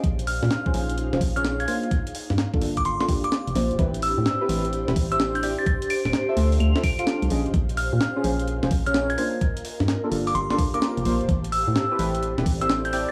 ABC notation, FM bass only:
X:1
M:4/4
L:1/16
Q:"Swing 16ths" 1/4=128
K:Aphr
V:1 name="FM bass" clef=bass
B,,,3 B,, z2 B,,,3 F,,, B,,,4 z2 | z3 G,, z2 G,,,2 G,,, z4 F,,, B,,, D,,, | A,,,3 A,, z2 A,,,3 E,,, A,,,4- A,,, z | z3 D,,, z2 D,,2 D,, z4 C,, B,,, F,,, |
B,,,3 B,, z2 B,,,3 F,,, B,,,4 z2 | z3 G,, z2 G,,,2 G,,, z4 F,,, B,,, D,,, | A,,,3 A,, z2 A,,,3 E,,, A,,,4- A,,, z |]